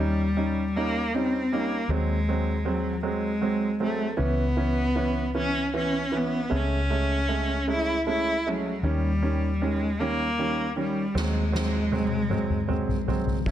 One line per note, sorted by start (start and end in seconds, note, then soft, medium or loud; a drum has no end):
0.00 1.85 D#2 medium
0.00 0.23 G3 medium
0.00 0.78 G3 medium
0.00 0.23 C#4 soft
0.00 0.24 D#4 medium
0.37 0.62 G3 medium
0.37 0.62 C#4 soft
0.37 0.62 D#4 medium
0.76 1.01 G3 medium
0.76 1.17 A#3 medium
0.76 1.01 C#4 medium
0.76 1.01 D#4 medium
1.14 1.39 G3 medium
1.14 1.55 C4 medium
1.14 1.39 C#4 medium
1.14 1.39 D#4 medium
1.52 1.78 G3 medium
1.52 1.93 A#3 medium
1.52 1.78 C#4 medium
1.52 1.78 D#4 medium
1.89 4.16 D#2 medium
1.89 2.16 F#3 medium
1.89 2.16 G#3 medium
1.89 2.69 G#3 medium
1.89 2.16 C4 medium
2.29 2.54 F#3 medium
2.29 2.54 G#3 soft
2.29 2.54 C4 medium
2.65 2.92 F#3 medium
2.65 3.04 F#3 medium
2.65 2.92 G#3 soft
2.65 2.92 C4 medium
3.03 3.30 F#3 medium
3.03 3.30 G#3 medium
3.03 3.78 G#3 medium
3.03 3.30 C4 medium
3.41 3.68 F#3 medium
3.41 3.69 G#3 soft
3.41 3.69 C4 medium
3.80 4.07 F#3 medium
3.80 4.07 G#3 soft
3.80 4.18 A3 medium
3.80 4.07 C4 medium
4.17 6.47 C#2 medium
4.17 4.45 E3 medium
4.17 4.45 B3 soft
4.17 4.45 C#4 medium
4.22 5.32 B3 medium
4.57 4.84 E3 medium
4.57 4.84 B3 medium
4.57 4.84 C#4 medium
4.95 5.22 E3 medium
4.95 5.22 B3 soft
4.95 5.23 C#4 medium
5.35 5.61 E3 medium
5.35 5.61 B3 medium
5.35 5.62 C#4 medium
5.35 5.72 C#4 medium
5.74 6.00 E3 medium
5.74 6.00 B3 medium
5.74 6.01 C#4 medium
5.74 6.18 C#4 medium
6.12 6.38 E3 medium
6.12 6.39 B3 soft
6.12 6.39 C#4 medium
6.17 6.58 B3 medium
6.50 8.79 C#2 medium
6.50 6.77 G#3 medium
6.50 6.77 A3 medium
6.50 6.77 C#4 medium
6.56 7.70 C#4 medium
6.90 7.16 G#3 medium
6.90 7.16 A3 medium
6.90 7.17 C#4 medium
7.28 7.55 G#3 medium
7.28 7.55 A3 medium
7.28 7.55 C#4 medium
7.68 7.93 G#3 medium
7.68 7.94 A3 medium
7.68 7.94 C#4 medium
7.68 8.05 E4 medium
8.07 8.32 G#3 medium
8.07 8.32 A3 medium
8.07 8.33 C#4 medium
8.07 8.49 E4 medium
8.46 8.87 F#3 medium
8.46 8.71 G#3 medium
8.46 8.72 A3 soft
8.46 8.72 C#4 medium
8.83 11.11 D#2 medium
8.83 9.09 D#3 medium
8.83 9.09 G3 medium
8.83 9.65 G3 medium
8.83 9.10 C#4 medium
9.22 9.48 D#3 medium
9.22 9.48 G3 soft
9.22 9.48 C#4 medium
9.61 9.87 D#3 medium
9.61 9.87 G3 medium
9.61 10.01 G#3 medium
9.61 9.87 C#4 medium
10.00 10.26 D#3 medium
10.00 10.26 G3 medium
10.00 10.77 A#3 medium
10.00 10.26 C#4 medium
10.38 10.64 D#3 medium
10.38 10.64 G3 medium
10.38 10.65 C#4 medium
10.76 11.02 D#3 medium
10.76 11.02 G3 medium
10.76 11.21 G3 medium
10.76 11.02 C#4 medium
11.15 13.42 D#2 medium
11.15 11.41 F#3 medium
11.15 11.41 G#3 medium
11.15 11.41 C4 medium
11.15 snare soft
11.19 13.10 G#3 medium
11.52 11.79 F#3 medium
11.52 11.79 G#3 medium
11.52 11.79 C4 medium
11.52 snare soft
11.92 12.18 F#3 medium
11.92 12.18 G#3 soft
11.92 12.18 C4 medium
11.92 high tom medium
12.30 12.56 F#3 medium
12.30 12.56 G#3 medium
12.30 12.57 C4 medium
12.30 mid tom medium
12.50 mid tom medium
12.68 12.94 F#3 medium
12.68 12.95 G#3 medium
12.68 12.95 C4 medium
12.68 mid tom medium
12.88 floor tom medium
13.08 13.34 F#3 soft
13.08 13.34 G#3 soft
13.08 13.34 C4 medium
13.08 floor tom medium
13.27 floor tom medium
13.46 13.51 F#1 medium
13.46 13.51 F#3 medium
13.46 13.51 A3 medium
13.46 13.51 C#4 medium
13.46 kick medium
13.46 crash medium